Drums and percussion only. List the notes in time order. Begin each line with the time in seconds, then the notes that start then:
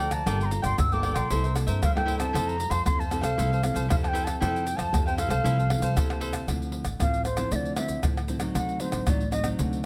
0.11 pandeiro, tamborim, shaker, surdo
0.27 pandeiro, tamborim, shaker, surdo
0.41 pandeiro, shaker
0.51 pandeiro, shaker
0.64 pandeiro, tamborim, shaker, surdo
0.78 pandeiro, tamborim, shaker, surdo
0.92 pandeiro, shaker
1.03 pandeiro, tamborim
1.16 pandeiro, tamborim, shaker
1.30 pandeiro, shaker, surdo
1.44 pandeiro, shaker
1.56 pandeiro, tamborim, shaker
1.67 pandeiro, shaker, surdo
1.83 pandeiro, tamborim, shaker, surdo
1.97 pandeiro, tamborim, shaker, surdo
2.08 pandeiro, surdo
2.20 pandeiro, tamborim, shaker, surdo
2.35 pandeiro, tamborim, shaker, surdo
2.49 pandeiro, shaker
2.60 pandeiro, shaker
2.71 pandeiro, tamborim, shaker, surdo
2.86 pandeiro, tamborim, shaker, surdo
3.00 pandeiro, shaker
3.11 pandeiro, tamborim, shaker
3.23 pandeiro, tamborim, shaker
3.39 pandeiro, shaker, surdo
3.53 pandeiro, shaker
3.63 pandeiro, tamborim, shaker
3.76 pandeiro, shaker, surdo
3.90 pandeiro, tamborim, shaker, surdo
4.04 pandeiro, tamborim, shaker, surdo
4.15 pandeiro, shaker
4.27 pandeiro, tamborim, shaker, surdo
4.42 pandeiro, tamborim, shaker, surdo
4.56 pandeiro, shaker
4.67 pandeiro, shaker
4.79 pandeiro, tamborim, shaker, surdo
4.94 pandeiro, tamborim, shaker, surdo
5.08 pandeiro, shaker
5.18 pandeiro, tamborim, shaker
5.30 pandeiro, tamborim, shaker
5.46 pandeiro, shaker, surdo
5.59 pandeiro, shaker
5.70 pandeiro, tamborim
5.82 pandeiro, shaker, surdo
5.97 pandeiro, tamborim, shaker, surdo
6.10 pandeiro, tamborim, shaker, surdo
6.21 pandeiro, surdo
6.33 pandeiro, tamborim, shaker, surdo
6.48 pandeiro, tamborim, shaker, surdo
6.62 pandeiro, shaker
6.72 pandeiro
6.85 pandeiro, tamborim, shaker, surdo
7.00 pandeiro, tamborim, shaker, surdo
7.14 pandeiro, shaker
7.25 pandeiro, tamborim, shaker
7.37 pandeiro, tamborim, shaker
7.52 pandeiro, shaker, surdo
7.65 pandeiro, shaker
7.76 pandeiro, tamborim, shaker
7.88 pandeiro, shaker, surdo
8.03 pandeiro, tamborim, shaker, surdo
8.17 pandeiro, tamborim, shaker, surdo
8.28 pandeiro, shaker, surdo
8.40 pandeiro, tamborim, shaker, surdo
8.55 pandeiro, tamborim, shaker, surdo
8.69 pandeiro, shaker
8.80 pandeiro, shaker
8.92 pandeiro, tamborim, shaker, surdo
9.07 pandeiro, tamborim, shaker, surdo
9.21 pandeiro, shaker
9.32 pandeiro, tamborim, shaker
9.44 pandeiro, tamborim, shaker
9.59 pandeiro, shaker, surdo
9.73 pandeiro, shaker